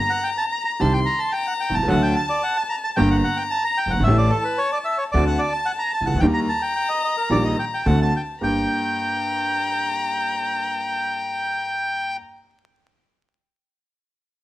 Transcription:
Already playing: A#5
0.10 F#5
0.23 G5
0.38 A5
0.52 A#5
0.65 A#5
0.80 C2 C3 D#3 G3 C4 G4 A5 C6
0.93 G5
1.06 A#5
1.19 A5
1.33 G5 A#5
1.47 F#5
1.60 G5
1.70 B1
1.75 C2 A5
1.83 C#2
1.87 D2 D3 F#3 A3 F#4 F#5 A5
2.02 G5
2.16 A5
2.29 D5
2.43 F#5
2.57 A5
2.70 A#5
2.84 A5
2.96 G1 G2 D3 G3 A#3 G4 G5 A#5
3.11 F#5
3.24 F#5
3.37 G5
3.51 A5
3.65 A#5
3.77 G5
3.86 F#1
3.90 G1 F#5
4.00 G#1 E5
4.05 A1 A2 E3 A3 C#4 G4 A5
4.18 D5
4.30 A4
4.44 B4
4.58 C#5
4.72 D5
4.85 E5
4.98 C#5
5.12 D2 D3 A3 C4 F#4 D5 A5
5.27 F#5
5.39 D5
5.53 A5
5.66 F#5
5.79 A#5
5.94 A5
6.01 C2
6.06 C#2 F#5
6.14 D2
6.20 D#2 D#3 G3 A#3 G4 G5 A#5
6.34 A#5
6.49 A5
6.62 G5
6.76 G5
6.89 D#5
7.04 D#5
7.17 A#4
7.30 A#1 A#2 D#3 G3 A#3 G4 D5
7.45 D#5
7.59 G5
7.74 G5
7.86 D2 D3 A3 C4 F#4 F#5 A5
8.02 A5
8.16 G5
8.41 G1 G2 A#3 D4 G4 G5 A#5

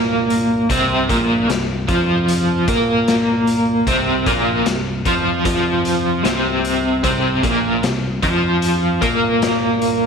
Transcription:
Already playing: C2 G2 A#2 A#3 A#4
0.30 closed hi-hat
0.70 C2 C3 C4, kick, closed hi-hat
1.09 A#1 A#2 A#3, kick, closed hi-hat
1.48 C2 C3, snare, closed hi-hat
1.88 F2 F3 F4, kick, closed hi-hat
2.28 closed hi-hat
2.68 A#2 A#3 A#4, kick, closed hi-hat
3.08 snare, closed hi-hat
3.47 closed hi-hat
3.87 C2 C3 C4, kick, closed hi-hat
4.26 A#1 A#2 A#3, kick, closed hi-hat
4.65 C2 C3, snare, closed hi-hat
5.05 F2 F3 F4, kick, closed hi-hat
5.45 F2 F3 F4, kick, closed hi-hat
5.85 closed hi-hat
6.24 C2 C3 C4, snare, closed hi-hat
6.65 closed hi-hat
7.03 C2 G2 C3 C4, kick, closed hi-hat
7.43 A#1 A#2 A#3, kick, closed hi-hat
7.83 C2 C3, snare, closed hi-hat
8.22 F2 F3 F4, kick, closed hi-hat
8.62 closed hi-hat
9.02 A#2 A#3 A#4, kick, closed hi-hat
9.42 snare, closed hi-hat
9.82 closed hi-hat

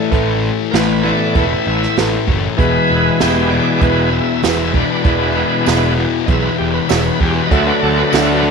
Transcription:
Already playing: A2 E3 A3
0.11 A1 A2 E3 A3 E4 A4 B4, kick, closed hi-hat
0.71 A1 A2 E3 A3 E4 A4 A#4 B4, snare, closed hi-hat
0.76 B4
1.02 A2 E3 A3 B3 C#5 D5
1.35 E1 A2 E3 A3 E4 A4 B4 E5, kick, closed hi-hat
1.67 A1 E5
1.83 snare
1.97 A1 A2 E3 A3 E4 A4 B4, snare, closed hi-hat
2.27 F#1 A2 E3 A3, kick
2.57 E1 E2 B2 E3 G#3 B3 E4 G#4 B4, kick, closed hi-hat
2.90 E1
3.20 E1 E2 B2 E3 E4 G4 G#4 B4, snare, closed hi-hat, tambourine
3.51 E2 B2 E3 D5
3.81 E1 E2 B2 E3 G#3 B3 E4 G#4 B4, kick, closed hi-hat
4.13 E5
4.43 E1 E2 B2 E3 E4 G#4 B4 E5, snare, closed hi-hat, tambourine
4.74 E2 B2 E3 D4 B4, kick
5.05 E1 E2 B2 E3 G#3 B3 E4 G#4 D5, kick, closed hi-hat
5.66 E1 E2 B2 E3 E4 G#4 B4, snare, closed hi-hat, tambourine
5.97 E2 B2 E3
6.26 B1 E2 B2 E3 E4 G#4 B4 D#5, kick, closed hi-hat
6.30 E5
6.42 B4
6.58 E1 G4
6.74 B4
6.89 E1 E2 B2 E3 E4 G#4 C#5 E5, snare, closed hi-hat, tambourine
7.06 B4
7.19 E2 B2 E3 G4, kick
7.36 B4
7.47 D2 D3 F#3 A3 D4 D#5, kick, closed hi-hat
7.51 A3 D4 F#4 A4 E5
7.66 B4
7.83 D2 A4
7.98 B4
8.11 D2 D3 A3 D4 F#4 A4 D#5, snare, closed hi-hat, tambourine
8.16 E5
8.32 B4
8.42 D3 A3 D4

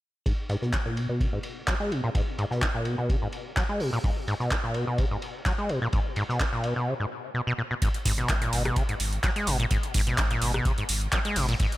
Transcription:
0.26 G#2, kick, ride
0.49 G#2, snare, ride
0.62 B2, snare
0.73 F#3, kick, snare, clap, ride
0.86 A#2
0.97 B2, ride
1.09 B2
1.20 C#3, kick, ride
1.33 G#2
1.43 ride
1.68 F#3, kick, snare, clap, ride
1.80 G#3
1.91 B2, ride
2.04 A#2
2.15 G#2, kick, ride
2.38 G#2, ride
2.51 B2, snare
2.62 F#3, kick, snare, clap, ride
2.75 A#2
2.85 B2, ride
2.98 B2
3.09 C#3, kick, ride
3.22 G#2
3.32 ride
3.56 F#3, kick, snare, clap, ride
3.69 G#3
3.80 B2, open hi-hat
3.93 A#2, ride
4.04 G#2, kick, ride
4.27 G#2, snare, ride
4.40 B2, snare
4.51 F#3, kick, snare, clap, ride
4.64 A#2
4.74 B2, ride
4.87 B2
4.98 C#3, kick, ride
5.11 G#2
5.22 ride
5.46 F#3, kick, snare, clap, ride
5.58 G#3
5.69 B2, ride
5.82 A#2
5.93 G#2, kick, ride
6.16 G#2, ride
6.29 B2, snare
6.39 F#3, kick, snare, clap, ride
6.53 A#2
6.64 B2, ride
6.76 B2
6.87 C#3
7.00 G#2
7.34 B2
7.47 B2
7.58 A#2
7.71 B2
7.82 G#2, kick, closed hi-hat, ride
7.94 closed hi-hat
8.05 G#1 G#2, kick, snare, open hi-hat, ride
8.18 B2, snare, closed hi-hat
8.29 G#1 F#3, kick, snare, clap, closed hi-hat, ride
8.42 A#2, closed hi-hat
8.53 G#1 B2, open hi-hat, ride
8.65 B2, cross-stick, closed hi-hat
8.76 C#3, kick, closed hi-hat, ride
8.89 G#2, closed hi-hat
9.00 G#1, open hi-hat, ride
9.13 closed hi-hat
9.23 F#3, kick, snare, clap, closed hi-hat, ride
9.36 G#3, closed hi-hat
9.47 G#1 B2, open hi-hat, ride
9.60 A#2, closed hi-hat
9.71 G#2, kick, closed hi-hat, ride
9.83 closed hi-hat
9.94 G#1 G#2, kick, open hi-hat, ride
10.07 B2, snare, closed hi-hat
10.18 G#1 F#3, kick, snare, clap, closed hi-hat, ride
10.31 A#2, closed hi-hat
10.42 G#1 B2, open hi-hat, ride
10.54 B2, cross-stick, closed hi-hat
10.65 C#3, kick, closed hi-hat, ride
10.78 G#2, closed hi-hat
10.89 G#1, open hi-hat, ride
11.01 closed hi-hat
11.12 F#3, kick, snare, clap, closed hi-hat, ride
11.25 G#3, closed hi-hat
11.36 G#1 B2, open hi-hat
11.48 A#2, closed hi-hat, ride
11.60 G#2, kick, closed hi-hat, ride
11.72 closed hi-hat

